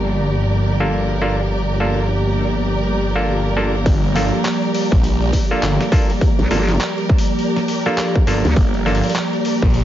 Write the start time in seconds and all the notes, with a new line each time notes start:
Already playing: G1 F3 G3 A#3 G4 A#4 D5
0.80 A#3 D4 F4 A4
1.22 A#3 D4 F4 A4
1.80 A#3 D4 F4 A4
3.15 A#3 D4 F4 A4
3.57 A#3 D4 F4 A4
3.86 G1 F3 G3 A#3 G4, kick, open hi-hat
4.04 open hi-hat
4.15 A#3 D4 F4 A4, snare, open hi-hat
4.45 clap, open hi-hat
4.63 open hi-hat
4.74 open hi-hat
4.92 A#1, kick, open hi-hat
5.04 open hi-hat
5.22 open hi-hat
5.33 kick, open hi-hat
5.51 A#3 D4 F4 A4
5.62 G1, clap, open hi-hat
5.81 snare, open hi-hat
5.92 A#3 D4 F4 A4, kick, open hi-hat
6.10 open hi-hat
6.21 kick, open hi-hat
6.39 A#1, open hi-hat
6.51 G1 A#3 D4 F4 A4, open hi-hat
6.69 snare, open hi-hat
6.72 open hi-hat
6.74 open hi-hat
6.77 clap, open hi-hat
6.80 open hi-hat
6.85 open hi-hat
6.89 open hi-hat
6.93 open hi-hat
6.98 open hi-hat
7.09 kick
7.18 open hi-hat
7.27 open hi-hat
7.39 open hi-hat
7.56 snare, open hi-hat
7.68 open hi-hat
7.86 A#3 D4 F4 A4, snare
7.98 clap, open hi-hat
8.15 kick
8.27 G1 A#3 D4 F4 A4, open hi-hat
8.45 D2, open hi-hat
8.56 G1, kick, open hi-hat
8.74 open hi-hat
8.86 A#3 D4 F4 A4, snare, open hi-hat
8.95 open hi-hat
9.04 open hi-hat
9.10 open hi-hat
9.15 clap
9.33 open hi-hat
9.45 open hi-hat
9.62 A#1, kick
9.70 open hi-hat
9.74 open hi-hat
9.80 open hi-hat